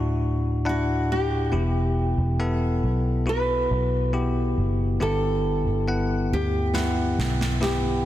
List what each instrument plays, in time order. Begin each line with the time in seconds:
Already playing: tine electric piano D2 A2 D4 E4 F#4, nylon-string guitar E4
0.65 tine electric piano D4 E4 F#5, nylon-string guitar F#4
1.12 nylon-string guitar G4
1.52 fingered electric bass E1, tine electric piano B2 B3 E4 G4
2.18 fingered electric bass E1
2.39 tine electric piano B3 E4 A4
2.53 nylon-string guitar F#4
2.83 fingered electric bass B1
3.26 tine electric piano B3 E4 F#4, nylon-string guitar B4
3.71 fingered electric bass B1
4.13 tine electric piano B3 E4 G4
4.57 fingered electric bass F#1
5.00 tine electric piano G2 D3 B3 E4 G4, nylon-string guitar A4
5.67 fingered electric bass G1
5.88 tine electric piano B3 E4 F#5
6.32 fingered electric bass D2, nylon-string guitar G4
6.74 tine electric piano B3 E4 F#5, snare
7.18 fingered electric bass B1, snare
7.41 snare
7.61 tine electric piano B3 E4 G4, nylon-string guitar G4, snare